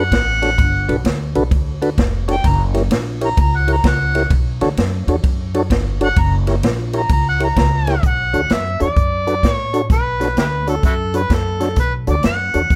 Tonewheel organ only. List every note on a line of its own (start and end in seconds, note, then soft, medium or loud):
0.42 0.50 D4 medium
0.42 0.50 F#4 medium
0.42 0.50 A4 medium
0.42 0.50 C#5 medium
0.88 0.97 D4 medium
0.88 0.97 F#4 medium
0.88 0.97 A4 medium
0.88 0.97 B4 loud
1.35 1.44 D4 medium
1.35 1.43 F#4 medium
1.35 1.44 A4 medium
1.35 1.44 B4 loud
1.82 1.90 D4 medium
1.82 1.90 F#4 medium
1.82 1.90 A4 medium
1.82 1.90 B4 loud
2.28 2.36 D4 medium
2.28 2.36 F#4 medium
2.28 2.36 A4 medium
2.28 2.36 C#5 medium
2.74 2.83 E4 medium
2.74 2.83 G4 medium
2.74 2.83 A#4 medium
2.74 2.83 C#5 medium
3.21 3.29 E4 medium
3.21 3.29 G4 medium
3.21 3.30 A#4 medium
3.21 3.30 C#5 medium
3.68 3.76 E4 medium
3.68 3.76 G4 medium
3.68 3.76 A#4 medium
3.68 3.76 C#5 medium
4.15 4.23 E4 medium
4.15 4.23 G4 medium
4.15 4.23 A#4 medium
4.15 4.23 C#5 medium
4.61 4.69 D4 loud
4.61 4.69 F#4 medium
4.61 4.69 A4 medium
4.61 4.69 C#5 loud
5.08 5.16 D4 medium
5.08 5.16 F#4 medium
5.08 5.16 A4 medium
5.08 5.16 C#5 loud
5.54 5.62 D4 loud
5.54 5.63 F#4 medium
5.54 5.63 A4 medium
5.54 5.63 C#5 loud
6.01 6.09 D4 medium
6.01 6.09 F#4 medium
6.01 6.09 A4 medium
6.01 6.09 C#5 medium
6.47 6.55 E4 medium
6.47 6.56 G4 medium
6.47 6.55 A#4 medium
6.47 6.56 C#5 medium
6.93 7.02 E4 medium
6.93 7.02 G4 medium
6.93 7.02 A#4 medium
6.93 7.02 C#5 medium
7.40 7.49 E4 medium
7.40 7.48 G4 medium
7.40 7.48 A#4 medium
7.40 7.49 C#5 medium
7.87 7.95 E4 medium
7.87 7.96 G4 medium
7.87 7.95 A#4 medium
7.87 7.96 C#5 medium
8.33 8.42 D4 medium
8.33 8.42 F#4 medium
8.33 8.42 A4 medium
8.33 8.42 C#5 medium
8.80 8.89 D4 medium
8.80 8.89 F#4 medium
8.80 8.88 A4 medium
8.80 8.88 C#5 medium
9.27 9.35 D4 medium
9.27 9.35 F#4 medium
9.27 9.35 A4 medium
9.27 9.35 B4 medium
9.73 9.82 D4 medium
9.73 9.82 F#4 medium
9.73 9.82 A4 medium
9.73 9.82 C#5 medium
10.20 10.29 D4 medium
10.20 10.28 F#4 medium
10.20 10.29 A4 medium
10.20 10.29 C#5 medium
10.67 10.75 D4 medium
10.67 10.75 F#4 medium
10.67 10.76 A4 medium
10.67 10.75 C#5 medium
11.14 11.22 D4 medium
11.14 11.22 F#4 medium
11.14 11.22 A4 medium
11.14 11.22 C#5 medium
11.60 11.69 D4 medium
11.60 11.69 F#4 medium
11.60 11.69 A4 medium
11.60 11.69 C#5 medium
12.07 12.15 D4 medium
12.07 12.16 F#4 medium
12.07 12.15 A4 medium
12.07 12.16 C#5 medium
12.54 12.62 D4 medium
12.54 12.62 F#4 medium
12.54 12.62 A4 medium
12.54 12.62 C#5 medium